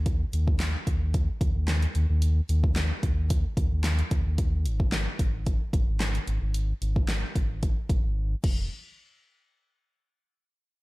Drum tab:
CC |----------------|----------------|----------------|--------------x-|
HH |x-x-x-x-x-x-xxx-|x-x-x-x-x-x-xxx-|x-x-x-x-x-x-xxx-|x-x-x-x-x-x-----|
CP |----x-------x---|----x-------x---|----x-------x---|----x-----------|
SD |----o-------o---|----o-------o---|----o-------o---|----o-----------|
BD |o--o--o-o-o-----|---o--o-o-o---o-|o--o--o-o-o-----|---o--o-o-o---o-|

CC |----------------|
HH |----------------|
CP |----------------|
SD |----------------|
BD |----------------|